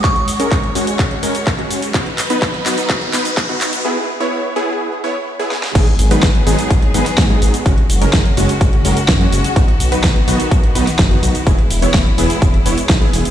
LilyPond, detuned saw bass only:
\new Staff \with { instrumentName = "Detuned saw bass" } { \clef bass \time 4/4 \key gis \minor \tempo 4 = 126 r1 | r1 | r1 | gis,,8 gis,,8 gis,,8 gis,,8 gis,,8 gis,,8 gis,8 gis,,8 |
fis,,8 fis,,8 fis,,8 fis,,8 fis,,8 fis,,8 fis,8 fis,,8 | b,,8 b,,8 b,,8 b,,8 b,,8 b,,8 fis,,8 b,,8 | e,,8 e,,8 e,,8 e,,8 e,,8 e,,8 b,,8 e,,8 | }